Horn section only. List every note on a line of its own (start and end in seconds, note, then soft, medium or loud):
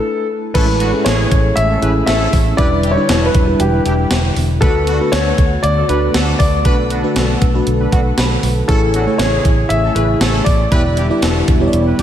0.55 0.65 C#4 loud
0.55 0.65 E4 loud
0.55 0.65 A4 loud
0.81 0.91 B3 medium
0.81 0.91 D4 medium
0.81 0.91 F#4 loud
1.06 1.26 C#4 medium
1.06 1.26 E4 medium
1.06 1.26 G#4 loud
1.69 1.80 C#4 medium
1.69 1.79 E4 medium
1.69 1.80 A4 medium
1.82 1.92 E4 medium
1.82 1.92 G#4 medium
1.82 1.92 B4 medium
2.08 2.28 C#4 loud
2.08 2.28 E4 loud
2.08 2.28 A4 loud
2.59 2.69 E4 loud
2.59 2.69 G4 loud
2.59 2.69 B4 loud
2.84 2.94 D4 medium
2.84 2.94 E4 medium
2.84 2.94 G4 loud
3.09 3.30 D4 medium
3.09 3.30 F#4 medium
3.09 3.30 A4 loud
3.73 3.83 E4 medium
3.73 3.83 G4 medium
3.73 3.83 B4 medium
3.86 3.93 D4 medium
3.86 3.93 E4 medium
3.86 3.93 G4 medium
4.62 4.72 D4 loud
4.62 4.72 F#4 loud
4.62 4.72 B4 loud
4.87 4.97 B3 medium
4.87 4.97 D4 loud
4.87 4.97 F#4 loud
5.13 5.33 D4 medium
5.13 5.33 F#4 loud
5.13 5.33 A4 loud
5.76 5.87 D4 medium
5.76 5.87 F#4 medium
5.76 5.87 A4 medium
5.89 5.99 D4 medium
5.89 5.99 F#4 medium
5.89 5.99 B4 medium
6.15 6.35 D4 loud
6.15 6.35 F#4 loud
6.15 6.35 A4 loud
6.65 6.75 D4 loud
6.65 6.76 F#4 loud
6.65 6.75 B4 loud
6.91 7.01 B3 medium
6.91 7.01 D4 medium
6.91 7.01 F#4 loud
7.16 7.37 D4 medium
7.16 7.37 F#4 medium
7.16 7.37 A4 loud
7.80 7.90 D4 medium
7.80 7.90 F#4 medium
7.80 7.90 B4 medium
7.92 8.00 B3 medium
7.92 8.00 D4 medium
7.92 8.00 F#4 medium
8.69 8.79 C#4 loud
8.69 8.79 E4 loud
8.69 8.79 A4 loud
8.94 9.04 B3 medium
8.94 9.04 D4 medium
8.94 9.04 F#4 loud
9.20 9.40 C#4 loud
9.20 9.40 E4 loud
9.20 9.40 G#4 loud
9.83 9.93 C#4 medium
9.83 9.93 E4 medium
9.83 9.93 A4 medium
9.96 10.06 E4 medium
9.96 10.06 G#4 medium
9.96 10.06 B4 medium
10.21 10.41 C#4 loud
10.21 10.42 E4 loud
10.21 10.41 A4 loud
10.72 10.82 E4 loud
10.72 10.82 G4 loud
10.72 10.82 B4 loud
10.98 11.08 D4 medium
10.98 11.08 E4 medium
10.98 11.08 G4 loud
11.23 11.43 D4 medium
11.23 11.43 F#4 medium
11.23 11.43 A4 loud
11.87 11.97 E4 medium
11.87 11.97 G4 medium
11.87 11.97 B4 medium
11.99 12.03 D4 medium
11.99 12.03 E4 medium
11.99 12.03 G4 loud